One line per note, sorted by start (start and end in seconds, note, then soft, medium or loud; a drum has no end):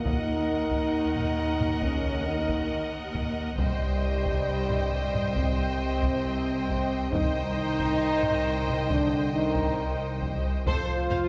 0.05 3.56 D#2 medium
0.05 1.80 D#3 medium
0.05 1.79 D#4 loud
0.05 3.56 A#4 medium
0.05 3.56 D#5 medium
0.05 3.56 F#5 medium
0.05 taiko loud
0.72 taiko medium
1.16 taiko low-mid soft
1.61 taiko low-mid soft
1.82 2.27 C#3 medium
1.82 2.27 C#4 medium
1.82 taiko medium
2.27 3.16 D#3 medium
2.27 3.16 D#4 medium
2.49 taiko medium
3.15 taiko medium
3.59 7.09 C2 medium
3.59 5.32 G2 medium
3.59 5.33 G3 medium
3.59 7.09 C5 medium
3.59 7.09 D#5 medium
3.59 7.09 G5 medium
3.59 taiko medium
4.26 taiko medium
4.70 taiko low-mid soft
5.14 taiko low-mid soft
5.36 7.10 C3 medium
5.36 7.13 C4 loud
5.36 taiko medium
6.03 taiko medium
6.69 taiko medium
7.12 10.62 C2 medium
7.12 8.87 D#3 loud
7.12 8.89 D#4 loud
7.12 10.62 C5 medium
7.12 10.62 D#5 medium
7.12 10.63 G5 medium
7.12 taiko loud
7.80 taiko medium
8.24 taiko low-mid medium
8.68 taiko low-mid medium
8.89 9.34 D3 loud
8.89 9.33 D4 loud
8.89 taiko medium
9.33 10.22 D#3 medium
9.33 10.20 D#4 loud
9.56 taiko medium
10.22 taiko medium
10.66 10.74 F1 medium
10.66 10.74 F2 loud
10.66 11.29 F3 loud
10.66 11.29 F4 loud
10.66 10.87 A4 medium
10.66 10.87 C5 loud
10.66 taiko loud
11.10 11.19 F1 medium
11.10 11.19 F2 medium
11.10 11.19 C5 medium
11.10 11.18 F5 medium